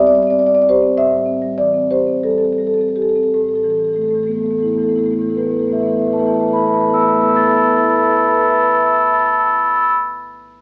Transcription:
marimba
Already playing: A2
0.00 C4 D5
0.07 D5
0.13 G3 D5
0.23 D5
0.27 C4 D5
0.39 G3 D5
0.46 D5
0.55 C4 D5
0.62 D5
0.69 G4 C5
0.83 C4
0.97 A2 E5
1.12 G3
1.26 C4
1.42 G3
1.58 E3 D5
1.74 C4
1.90 G4 C5
2.07 C4
2.23 G3 A4
2.31 A4
2.38 C4 A4
2.45 A4
2.53 A4
2.58 G3 A4
2.67 A4
2.74 A4
2.78 C4 A4
2.88 A4
2.96 G4 A4
3.02 A4
3.09 A4
3.15 C4 A4
3.23 A4
3.34 A2 A4
3.41 A2 A4
3.49 A4
3.54 A2 A4
3.63 A2 E3 A4
3.70 E3 A4
3.75 A2 A4
3.80 E3
3.84 A2 E3 A4
3.93 A2 E3 A3 A4
4.01 A2 A3 A4
4.05 E3 A4
4.11 A2 A3
4.15 E3 A4
4.19 A3
4.23 A2 E3 A3 A4
4.27 B3 A4
4.32 A2 E3 A3 B3
4.39 E3 A4
4.43 A2 A3 B3 A4
4.50 E3 A3 B3 A4
4.57 A2 E3 A3 B3 A4
4.63 A3 B3 E4
4.68 A2 E3 E4 A4
4.73 A3 B3 A4
4.78 A2 E3 B3 E4
4.82 A3 A4
4.87 A2 E3 A3 B3 E4
4.91 A4
4.95 A2 E3 A3 B3 E4 A4
5.04 E3 A3 B3 E4 A4
5.09 A2 B3 E4
5.13 E3 A3 A4
5.18 A2 E3 A3 B3 E4 A4
5.27 A2 E3 A3 B3 E4 A4
5.35 A2 A3 B3 E4 A4 B4
5.39 E3 B3 B4
5.45 A2 E3 A3 E4 A4
5.49 B3 A4 B4
5.54 E3 A3 E4 B4
5.59 A2 A3 B3 E4 A4
5.64 E3 B3 A4 B4
5.70 A2 E3 A3 E4 B4 E5
5.74 B3 A4
5.78 A2 E3 A3 E4 A4 B4 E5
5.83 A3 B3 B4 E5
5.88 E3 B3 E4 A4
5.92 A2 A3 E4 B4 E5
5.97 E3 B3 A4 E5
6.02 A2 A3 E4 A4 B4
6.06 E3 A3 B3 B4 E5
6.11 A2 B3 E4 A4 E5 A5
6.17 E3 A3 B3 E4 A4 B4 E5 A5
6.22 A2 E3 A3 B4
6.27 B3 E4 A4 E5 A5
6.31 A2 E3 A3 E4 A4 B4 E5 A5
6.36 B3 A5
6.40 A2 E3 A3 B3 E4 A4 B4 E5
6.47 A3 E4 A4 B4 E5 A5
6.51 A2 E3 B3 A4 B4 E5 A5 B5
6.56 A3 B3 E4 A5 B5
6.62 A2 E3 A3 E4 A4 B4 E5
6.66 B3 A4 B4 E5 A5 B5
6.71 A2 E3 A3 B3 E4 A5 B5
6.76 A4 B4 E5 B5
6.81 E3 A3 B3 E4 B4 E5 A5
6.85 E3 A3 B3 E4 A4 A5 B5
6.90 A4 B4 E5 E6
6.94 E3 A3 B3 E4 E5 A5 B5
6.98 A4 B4 A5 B5 E6
7.03 A3 B3 E4 B4 E5
7.07 A4 E5 A5 B5 E6
7.11 A3 B3 E4 B4 A5 B5 E6
7.16 B3 A4 E5 B5
7.21 A3 E4 A4 B4 E5 A5 E6
7.25 B3 B4 E5 A5 B5 E6
7.30 A3 E4 A4 B5
7.34 B3 B4 E5 A5 E6 A6
7.38 A3 B3 E4 A4 A5 B5 E6
7.43 A4 B4 E5 B5 A6
7.48 B3 E4 E5 A5 E6 A6
7.52 E4 A4 B4 B5 E6
7.56 B3 B4 E5 A5 B5 A6
7.62 B3 E4 A4 E5 A5 B5 E6 A6
7.66 A4 B4 E6
7.70 E4 B4 E5 A5 B5 A6
7.76 E4 A4 B4 E5 A5 B5 E6 A6
7.83 A4 E5 A5 B5 E6 A6
7.88 E4 B4 A5 B5 E6 A6
7.92 A4 B4 E5 E6
7.96 E4 A4 E5 A5 B5 A6
8.03 E4 B4 A5 B5 E6 A6
8.07 A4 B4 E5 A5 E6 A6
8.11 A4 E5 B5
8.16 B4 A5 B5 E6 A6
8.20 A4 B4 E5 A5 B5 E6 A6
8.28 A4 B4 E5 A5 B5 E6 A6
8.34 B4 E5 A5 B5 E6 A6
8.39 A4 E5 A6
8.43 B4 A5 B5 E6
8.47 E5 A5 B5 E6 A6
8.52 B4 E5 A6
8.56 B4 A5 B5 E6
8.60 E5 A5 B5 A6
8.65 B4 B5 E6 A6
8.69 B4 E5 A5 E6
8.74 E5 B5 A6
8.78 A5 B5 E6 A6
8.83 E5 A5 B5 E6 A6
8.90 E5 A5 E6
8.94 E5 B5 A6
8.98 A5 B5 E6 A6
9.03 E5 A5 E6
9.07 E5 B5 A6
9.11 A5 B5 E6 A6
9.18 A5 B5 E6 A6
9.24 A5 B5 E6 A6
9.32 A5 B5 E6 A6
9.38 A5 B5 E6 A6
9.44 A5 B5 E6 A6
9.51 A5 B5 E6 A6
9.57 B5 E6 A6
9.63 B5 E6 A6
9.69 B5 E6
9.74 B5 E6 A6
9.81 B5 E6 A6
9.87 B5 E6 A6

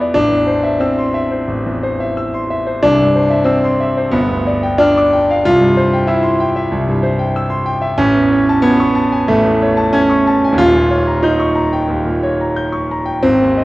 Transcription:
grand piano
Already playing: E2 B2 G#3 B3 B4 E5 B5 D6
0.01 D5
0.14 A1 D4
0.32 E2
0.47 C5
0.63 E5
0.80 C4 E6
0.98 C6
1.14 E5
1.31 C5
1.48 A1
1.66 E2
1.83 C5
2.00 E5
2.17 E6
2.34 C6
2.51 E5
2.67 C5
2.83 C2 D4
3.00 G2
3.16 C5
3.30 E5
3.44 C4 E6
3.64 C6
3.80 E5
3.97 C5
4.11 G1 B3
4.29 D2
4.47 D5
4.63 G5
4.78 D4 F6
4.97 D6
5.13 G5
5.30 F5
5.45 C2 F4
5.61 G2
5.77 C5
5.94 G5
6.07 E4 E6
6.23 C6
6.40 G5
6.56 E5
6.72 C2
6.87 G2
7.03 C5
7.19 G5
7.36 E6
7.50 C6
7.66 G5
7.81 E5
7.98 A1 C#4
8.14 E2
8.31 C#5
8.49 A5
8.62 B3 G#6
8.80 C#6
8.95 A5
9.12 G#5
9.28 A1 A3
9.45 E2
9.62 C#5
9.77 A5
9.93 C#4 G#6
10.10 C#6
10.27 A5
10.45 G#5
10.53 D#2
10.58 D#1 F4
10.75 A#2
10.90 C#5
11.08 A#5
11.23 D#4 G6
11.40 C#6
11.56 A#5
11.73 G5
11.89 D#2
12.05 A#2
12.23 C#5
12.41 A#5
12.56 G6
12.72 C#6
12.91 A#5
13.05 G5
13.22 G#1 C4
13.41 D#2
13.57 D#5

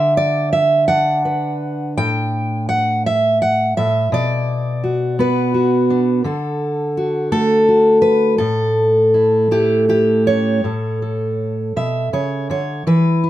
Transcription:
steel-string acoustic guitar
Already playing: D3 E5
0.17 D5
0.53 E5
0.88 D4 F#5
1.25 B4
1.97 A2 G5
2.69 F#5
3.06 E5
3.42 F#5
3.77 A2 E5
4.12 B2 D5
4.84 F#4
5.19 B3 B4
5.54 F#4
5.90 D4
6.24 D3 A4
6.97 F#4
7.32 A3 A4
7.69 F#4
8.02 B4
8.38 A2 A4
9.14 E4
9.51 A3 E4 G4
9.89 E4 G4
10.27 C#4 C#5
10.64 A2 A4
11.02 A4
11.76 B2 E5
12.13 C#3 C#5
12.50 D3 C#5
12.87 E3 B4
13.24 E4

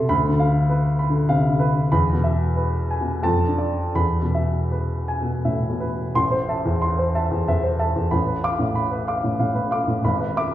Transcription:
grand piano
Already playing: F2 B2 C3 A4 E5 A5 C6
0.09 D2 B5
0.29 D3
0.39 F5
0.70 B4
0.99 B5
1.09 D3
1.29 C3 F5
1.49 D3
1.60 B4
1.92 E2 B5
2.13 B2
2.24 E5
2.57 B4
2.91 G#5
3.01 B2
3.23 F2 A5
3.47 D4
3.58 D5
3.95 E2 B5
4.22 B2
4.35 E5
4.72 B4
5.08 G#5
5.21 B2
5.45 A2 E5
5.69 B2
5.80 B4
6.15 A1 C6
6.31 C5
6.49 E5 A5
6.65 E2
6.82 C6
6.99 C5
7.15 E5 A5
7.31 E2
7.48 E2 E5
7.64 C5
7.79 E5 A5
7.96 E2
8.11 A1 B5
8.27 B4
8.44 F5 D6
8.59 A2
8.75 B5
8.91 B4
9.07 F5 D6
9.24 A2
9.40 A2 F5
9.55 B4
9.71 F5 D6
9.87 A2
10.04 G#1 B5
10.20 B4
10.37 E5 D6

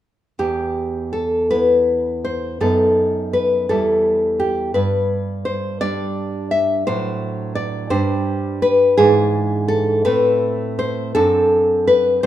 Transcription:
nylon-string guitar
0.39 E2 G4
1.13 A4
1.51 B3 E4 B4
2.25 C5
2.61 F#2 B3 D#4 A4
3.33 B4
3.69 E2 G3 E4 A4
4.40 G4
4.74 G2 B4
5.45 C5
5.81 G3 D4 D5
6.51 E5
6.87 A2 F#3 D4 C5
7.55 D5
7.90 G2 G3 D4 C5
8.62 B4
8.97 G#2 E3 D4 G#4
9.68 A4
10.05 A2 A3 C4 B4
10.79 C5
11.15 F#2 C4 D4 A4
11.87 B4

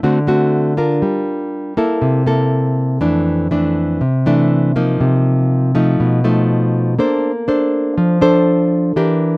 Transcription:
nylon-string guitar
0.03 D3 A3 C4 F#4
0.27 A3 C4 F#4
0.77 D4 F4 A#4
1.02 G3
1.77 A#3 E4 A4
2.02 C3
2.26 A#3 E4 A4
3.01 F2 E3 A3 D4
3.51 E3 A3 D4
4.01 C3
4.26 E3 A3 D4
4.76 F3 A#3 D#4
5.01 C3
5.75 F3 A3 D#4
6.00 B2
6.24 F3 A3 D#4
6.99 A#3 D4 A4 C5
7.48 D4 A4 C5
7.98 F3
8.21 D4 A4 C5
8.96 E3 D4 G4 A#4

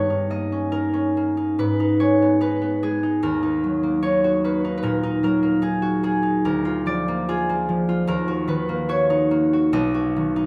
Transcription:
harp
Already playing: G2 C#5 D#5
0.10 D#4
0.30 A#3 D#5
0.52 C#4
0.72 D#4 A#4
0.93 C#4
1.17 A#3
1.37 D#4
1.59 G#2 B4
1.80 D#4
2.00 G#3 C#5
2.22 B3
2.41 D#4 B4
2.62 B3
2.83 G#3 G#4
3.03 D#4
3.23 D#2 A#4
3.43 D#4
3.64 F#3
3.83 A#3
4.02 D#4 C#5
4.24 F#4
4.44 A#3 B4
4.65 D#4
4.78 B4
4.83 A#2 A#4
5.03 D#4
5.23 F#3 A#4
5.43 A#3
5.62 D#4 G#4
5.82 F#4
6.03 A#3 G#4
6.23 D#4
6.45 D2 A#4
6.65 F4
6.86 F3 D5
7.08 A#3
7.29 F4 G#4
7.49 A#3
7.69 F3
7.89 F4
8.07 D#2 A#4
8.28 F#4
8.47 D#3 B4
8.69 A#3
8.89 F#4 C#5
9.10 D#4
9.31 A#3
9.53 F#4
9.73 B1 D#5
9.94 F#4
10.16 D#3
10.36 D#4

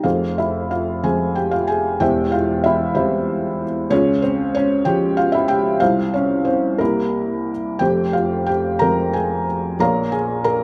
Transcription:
felt piano
0.04 F1 F2 F4 G#4 C5 F5
0.38 E4 E5
0.71 F4 F5
1.03 F3 G#3 C4 G#4 G#5
1.35 G4 G5
1.51 F4 F5
1.67 G#4 G#5
2.00 E1 E2 G4 C5 E5 G5
2.32 F4 F5
2.64 E4 E5
2.95 E3 G3 C4 E4 C5
3.90 C#2 C#4 F4 G#4 C#5
4.22 C4 C5
4.55 C#4 C#5
4.85 F3 G#3 C#4 G4 G5
5.17 F4 F5
5.32 E4 E5
5.48 G4 G5
5.80 C2 F4 C5 F5
6.14 C#4 C#5
6.45 C4 C5
6.78 C2 A#3 E4 G4 A#4
7.79 F1 F2 G4 C5 G5
8.13 F4 F5
8.46 G4 G5
8.79 F3 G#3 C4 A#4 A#5
9.13 G#4 G#5
9.80 A#1 A#2 A#4 C#5 F5 A#5
10.12 G#4 G#5
10.44 A#4 A#5

